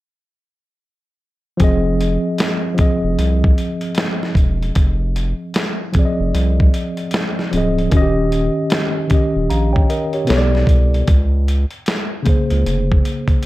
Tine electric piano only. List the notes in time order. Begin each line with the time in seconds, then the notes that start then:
1.57 F3 C4
1.62 G#4 D#5
2.75 F3 C4
2.79 G#4 D#5
5.93 F3 C4
5.97 G#4 D5
6.05 D#5
7.51 F3 C4
7.55 G#4 D#5
7.90 D#3 C#4
7.95 F#4 D#5
8.01 G4
9.08 D#3 C#4
9.12 G4 D#5
9.50 F5 A#5
9.73 C#5 G5
9.90 A#4 D#5
10.14 G4 C#5
10.25 B2 B3
10.29 A4 C#5
10.38 D5
12.23 C#3 A#3
12.27 G#4 C5